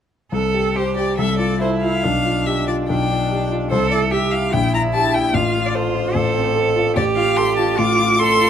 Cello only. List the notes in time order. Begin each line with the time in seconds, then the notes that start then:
0.32 A4
0.76 G4
1.17 A4
1.60 E4
2.03 D4
2.89 D4
3.70 A4
4.11 G4
4.52 E4
5.34 F4
6.15 A4
6.96 G4
7.78 F4
8.19 A4